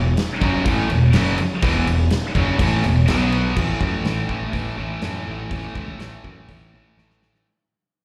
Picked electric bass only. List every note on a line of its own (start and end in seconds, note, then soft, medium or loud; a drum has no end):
0.00 0.15 E1 medium
0.42 0.64 F#1 loud
0.65 0.88 A1 loud
0.90 1.12 E1 medium
1.14 1.37 F#1 medium
1.39 muted picked electric bass stroke soft
1.63 1.85 E1 loud
1.86 2.09 E1 medium
2.35 2.58 F#1 medium
2.59 2.82 A1 loud
2.84 3.06 E1 medium
3.09 3.53 B1 medium
3.57 3.72 A1 medium
3.81 3.96 F#2 medium
4.05 4.20 A1 medium
4.30 4.45 A1 medium
4.53 4.69 A1 medium
4.78 4.94 A1 medium
5.03 5.18 F#2 medium
5.28 5.43 A1 medium
5.51 5.67 A1 medium
5.75 5.91 C#2 medium
5.99 6.15 A1 medium
6.24 6.40 F#2 medium
6.49 6.80 A1 medium
6.97 7.29 A1 medium